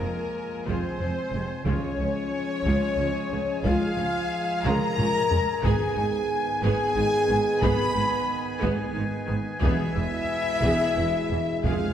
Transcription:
Already playing: trombone section F3 G#3, woodwind section G#3 F4 G#4 G#5, french horn section A#3, violin section A#4, trumpet section A#4, flute A#4
0.01 cello section F2
0.66 double bass section F1, cello section F2, viola section G#3 F4, french horn section C4, violin section C5, trumpet section C5, flute C5, taiko
0.99 double bass section F1, cello section F2, viola section F3 C4
1.33 double bass section F1, cello section F2, viola section C3 G#3
1.64 double bass section C#2, cello section C#2, trombone section F3 G#3, woodwind section G#3 F4 G#4 G#5, viola section G#3 F4, french horn section C#4, flute C#5, violin section C#5, trumpet section C#5, taiko
1.68 violin section C#5
1.98 double bass section C#2, cello section C#2, viola section F3 C#4
2.64 double bass section C#2, cello section C#2, viola section G#3 F4, taiko
2.97 double bass section C#2, cello section C#2, viola section F3 C#4
3.30 double bass section C#2, cello section C#2, viola section C#3 G#3
3.63 double bass section C#2, cello section C#2, viola section G#3 F4, french horn section F4, violin section F5, trumpet section F5, flute F5, taiko
3.96 double bass section C#2, cello section C#2, viola section F3 C#4
4.64 double bass section C#2, cello section C#2, viola section G#3 F4, french horn section A#4, violin section A#5, flute A#5, trumpet section A#5, taiko mid
4.97 double bass section C#2, cello section C#2, viola section F3 C#4, taiko low-mid
5.30 double bass section C#2, cello section C#2, viola section C#3 G#3, taiko low
5.61 double bass section G#1, cello section G#2, trombone section D#3 B3, woodwind section G#3 G#4 B4 G#5, viola section B3 G#4, french horn section G#4, trumpet section G#5, violin section G#5, flute G#5, taiko
5.66 violin section G#5
5.95 double bass section G#1, cello section G#2, viola section G#3 D#4
6.62 double bass section G#1, cello section G#2, viola section B3 G#4, french horn section G#4, trumpet section G#5, flute G#5, violin section G#5, taiko
6.94 double bass section G#1, cello section G#2, viola section G#3 D#4
7.28 double bass section G#1, cello section G#2, viola section D#3 B3
7.61 double bass section G#1, cello section G#2, viola section B3 G#4, french horn section B4, trumpet section B5, violin section B5, flute B5, taiko
7.93 double bass section G#1, cello section G#2, viola section G#3 D#4
8.60 double bass section G#1, cello section G#2, viola section B3 G#4, taiko
8.93 double bass section G#1, cello section G#2, viola section G#3 D#4
9.26 double bass section G#1, cello section G#2, viola section D#3 B3
9.60 double bass section E1, cello section E2, trombone section B2 G#3, viola section B3 G#4, french horn section E4, flute E5, trumpet section E5, violin section E5, taiko
9.95 double bass section E1, cello section E2, viola section G#3 E4
10.62 double bass section E1, cello section E2, viola section B3 G#4, taiko
10.97 double bass section E1, cello section E2, viola section G#3 E4
11.31 double bass section E1, cello section E2, viola section E3 B3
11.64 double bass section F1, timpani F2, cello section F2, trombone section C3, viola section G#3 G#4, woodwind section G#3 G#4 C5 G#5, french horn section F4, flute F5, trumpet section F5, violin section F5, taiko
11.73 timpani F2
11.80 timpani F2
11.87 timpani F2

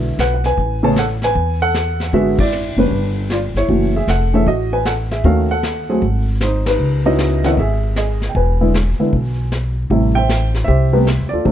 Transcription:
Already playing: upright bass B1, grand piano D3 G#3 B3 E4
0.18 upright bass B1, grand piano B4 F#5, snare, hi-hat pedal
0.34 grand piano F#5
0.44 grand piano B4 G#5, snare
0.57 upright bass A1, brush sweep, kick
0.83 grand piano C#3 A3 B3 G#4 C#5 A5
0.96 grand piano A4 F#5, snare, hi-hat pedal
1.22 grand piano B4 G#5, snare
1.35 upright bass E2, brush sweep, kick
1.62 grand piano A4 F#5
1.74 snare, hi-hat pedal
2.00 snare
2.13 upright bass G#1, grand piano D3 G#3 B3 F#4 G#4 E5, brush sweep, kick
2.39 grand piano E4 D5, kick, ride
2.52 hi-hat pedal
2.77 upright bass F#1, grand piano C#3 G3 B3 C#4 D4 B4
2.91 upright bass G1, brush sweep, kick
3.30 grand piano F4 D5, snare, hi-hat pedal
3.54 upright bass G1, grand piano E4 C#5, snare
3.68 upright bass F#1, grand piano E3 A3 C#4 F#4, brush sweep, kick
3.96 grand piano G#4 E5
4.07 upright bass F1, grand piano A4 F#5, snare, hi-hat pedal
4.34 grand piano E3 A3 C#4 G#4 A4 E5
4.46 upright bass A1, grand piano F#4 D#5, brush sweep, kick
4.73 grand piano B4 G#5
4.85 grand piano A4 F#5, snare, hi-hat pedal
5.11 grand piano G#4 E5, snare
5.24 upright bass D#2, grand piano D#3 A3 C#4 F#4 A4 F5, brush sweep, kick
5.51 grand piano A4 F#5
5.63 snare, hi-hat pedal
5.89 grand piano F#3 A3 C4 G#4
6.02 upright bass G#1, brush sweep, kick
6.41 grand piano D#4 C5, snare, hi-hat pedal
6.66 grand piano D#4 B4, snare, ride
6.79 upright bass C#2, brush sweep
7.06 grand piano B3 C#4 D#4 E4 F#4 D#5
7.19 snare, hi-hat pedal
7.44 grand piano D#3 B3 C#4 E4 A4 F#5, snare
7.52 grand piano D#5
7.57 upright bass G#1, grand piano G#4 E5, brush sweep, kick
7.96 grand piano G#4 D#5, snare, hi-hat pedal
8.22 snare
8.29 grand piano G5
8.35 upright bass E1, grand piano B4 G#5, brush sweep, kick
8.61 grand piano D3 G#3 B3 E4
8.74 snare, hi-hat pedal
9.00 grand piano D3 G#3 B3 E4
9.12 upright bass B1, brush sweep, kick
9.52 snare, hi-hat pedal
9.90 upright bass A1, grand piano C3 G3 A3 E4, brush sweep, kick
10.15 grand piano C5 E5 G5
10.29 snare, hi-hat pedal
10.55 snare
10.64 upright bass C2, grand piano G4 C5 E5, brush sweep, kick
10.93 grand piano C3 G3 A3 B3
11.07 snare, hi-hat pedal
11.19 upright bass E2
11.29 upright bass D#2, grand piano D5
11.33 grand piano F4 A4
11.45 upright bass D2, grand piano C3 F3 A3 D4, brush sweep, kick

